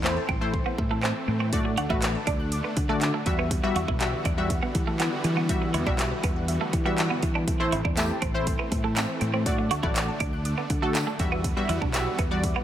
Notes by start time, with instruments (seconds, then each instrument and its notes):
Already playing: fingered electric bass E2, supersaw synth E3 A3 C4
0.04 synth stab A3 E4 C5, synth pluck E5, clap
0.17 synth pluck A5
0.29 fingered electric bass A1, clean electric guitar C4, synth pluck C6, kick
0.41 synth stab A3 E4 C5, synth pluck E6
0.54 synth pluck C6, kick
0.66 clean electric guitar B3
0.78 fingered electric bass A2, synth pluck E5, muted clean electric guitar stroke, kick
0.91 clean electric guitar A3, synth pluck E4
1.03 clean electric guitar C4, synth pluck C4, clap
1.28 fingered electric bass A2, synth pluck E3, muted clean electric guitar stroke
1.40 synth pluck A3, clean electric guitar C4
1.52 supersaw synth D3 A3 D4, synth pluck F#3, synth stab A3 F#4 D5, kick, closed hi-hat
1.65 synth pluck A3, muted clean electric guitar stroke
1.77 fingered electric bass D2, synth pluck D4, clean electric guitar F#4, closed hi-hat
1.90 fingered electric bass A1, synth stab A3 F#4 B4, clean electric guitar E4, synth pluck F#4, kick
2.02 synth pluck F#5, clap, closed hi-hat
2.15 synth pluck A5
2.27 fingered electric bass D2, clean electric guitar D4, synth pluck D6, kick, closed hi-hat
2.40 synth pluck F#6
2.52 synth pluck D6, closed hi-hat
2.64 clean electric guitar B3
2.77 fingered electric bass D3, synth pluck F#5, muted clean electric guitar stroke, kick, closed hi-hat
2.89 synth stab A3 F#4 D5, clean electric guitar A3, synth pluck F#4
3.01 synth pluck D4, clap, closed hi-hat
3.14 clean electric guitar A3
3.26 fingered electric bass E2, supersaw synth E3 G3 B3 F#4, synth stab G3 F#4 E5, synth pluck G3, muted clean electric guitar stroke, kick, closed hi-hat
3.38 synth pluck B3, clean electric guitar B3
3.51 synth pluck G3, kick, closed hi-hat
3.63 synth stab G3 F#4 E5, synth pluck B3, muted clean electric guitar stroke
3.76 fingered electric bass E2, synth pluck E4, clean electric guitar F#4, closed hi-hat
3.88 fingered electric bass B1, clean electric guitar E4, synth pluck F#4, kick
4.00 synth stab G3 F#4 E5, synth pluck G4, clap, closed hi-hat
4.13 synth pluck B4
4.25 fingered electric bass E2, clean electric guitar D4, synth pluck E5, kick, closed hi-hat
4.37 synth stab G3 F#4 E5, synth pluck F#5
4.50 synth pluck E5, kick, closed hi-hat
4.63 clean electric guitar B3
4.75 fingered electric bass E3, synth pluck G4, muted clean electric guitar stroke, kick, closed hi-hat
4.87 clean electric guitar A3, synth pluck F#4
5.00 clean electric guitar B3, synth pluck E4, clap, closed hi-hat
5.24 fingered electric bass E3, synth pluck G3, muted clean electric guitar stroke, closed hi-hat
5.37 synth pluck B3, clean electric guitar B3
5.49 synth stab G3 F#4 E5, synth pluck G3, kick, closed hi-hat
5.62 synth pluck B3, muted clean electric guitar stroke
5.74 fingered electric bass E2, synth pluck E4, clean electric guitar E4, closed hi-hat
5.86 fingered electric bass B1, synth stab G3 F#4 E5, clean electric guitar D4, synth pluck F#4, kick
5.99 synth pluck G4, clap, closed hi-hat
6.11 synth pluck B4
6.23 fingered electric bass E2, clean electric guitar B3, synth pluck E5, kick, closed hi-hat
6.36 synth pluck F#5
6.48 synth pluck E5, closed hi-hat
6.61 clean electric guitar A3
6.73 fingered electric bass E3, synth pluck G4, muted clean electric guitar stroke, kick, closed hi-hat
6.85 synth stab G3 F#4 E5, clean electric guitar B3, synth pluck F#4
6.98 synth pluck E4, clap, closed hi-hat
7.10 clean electric guitar B3
7.22 fingered electric bass E3, synth pluck G3, muted clean electric guitar stroke, kick, closed hi-hat
7.35 synth pluck B3, clean electric guitar D4
7.48 synth pluck E3, supersaw synth E3 A3 C4, kick, closed hi-hat
7.60 synth stab A3 E4 C5, synth pluck A3, muted clean electric guitar stroke
7.72 fingered electric bass A1, synth pluck C4, clean electric guitar E4, closed hi-hat
7.85 fingered electric bass E2, clean electric guitar D4, synth pluck E4, kick
7.97 synth stab A3 E4 G4, synth pluck E5, clap, closed hi-hat, tambourine
8.10 synth pluck A5
8.22 fingered electric bass A1, clean electric guitar C4, synth pluck C6, kick, closed hi-hat
8.34 synth stab A3 E4 C5, synth pluck E6
8.47 synth pluck C6, kick, closed hi-hat
8.59 clean electric guitar B3
8.72 fingered electric bass A2, synth pluck E5, muted clean electric guitar stroke, kick, closed hi-hat
8.84 clean electric guitar A3, synth pluck E4
8.96 clean electric guitar C4, synth pluck C4, clap, closed hi-hat, tambourine
9.21 fingered electric bass A2, synth pluck E3, muted clean electric guitar stroke, closed hi-hat
9.34 synth pluck A3, clean electric guitar C4
9.46 supersaw synth D3 A3 D4, synth pluck F#3, synth stab A3 F#4 D5, kick, closed hi-hat
9.58 synth pluck A3, muted clean electric guitar stroke
9.71 fingered electric bass D2, synth pluck D4, clean electric guitar F#4, closed hi-hat
9.83 fingered electric bass A1, synth stab A3 F#4 D5, clean electric guitar E4, synth pluck F#4, kick
9.96 synth pluck F#5, clap, closed hi-hat, tambourine
10.08 synth pluck A5
10.20 fingered electric bass D2, clean electric guitar D4, synth pluck D6, kick, closed hi-hat
10.33 synth pluck F#6
10.45 synth pluck D6, closed hi-hat
10.58 clean electric guitar B3
10.70 fingered electric bass D3, synth pluck F#5, muted clean electric guitar stroke, kick, closed hi-hat
10.82 synth stab A3 F#4 A4, clean electric guitar A3, synth pluck F#4
10.95 synth pluck D4, clap, closed hi-hat, tambourine
11.07 clean electric guitar A3
11.19 fingered electric bass E2, supersaw synth E3 G3 B3 F#4, synth stab G3 F#4 E5, synth pluck G3, muted clean electric guitar stroke, kick, closed hi-hat
11.32 clean electric guitar B3, synth pluck B3
11.44 synth pluck G3, kick, closed hi-hat
11.57 synth stab G3 F#4 E5, synth pluck B3, muted clean electric guitar stroke
11.69 fingered electric bass E2, clean electric guitar E4, synth pluck E4, closed hi-hat
11.82 fingered electric bass B1, clean electric guitar D4, synth pluck F#4, kick
11.94 synth stab G3 F#4 E5, synth pluck G4, clap, closed hi-hat, tambourine
12.06 synth pluck B4
12.19 fingered electric bass E2, clean electric guitar B3, synth pluck E5, kick, closed hi-hat
12.31 synth stab G3 F#4 D5, synth pluck F#5
12.44 synth pluck E5, kick, closed hi-hat
12.56 clean electric guitar B3